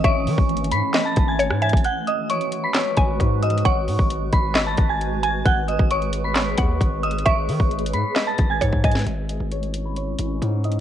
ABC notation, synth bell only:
X:1
M:4/4
L:1/16
Q:1/4=133
K:G#phr
V:1 name="Synth bell"
[cc']6 [bb']3 [aa']2 [gg']3 [gg']2 | [ff']2 [dd']2 [cc']3 [bb'] [cc']6 [dd']2 | [cc']6 [bb']3 [aa']2 [gg']3 [gg']2 | [ff']2 [dd']2 [cc']3 [bb'] [cc']6 [dd']2 |
[cc']6 [bb']3 [aa']2 [gg']3 [gg']2 | [ee']2 [dd']2 [cc']3 [bb'] [cc']6 [dd']2 |]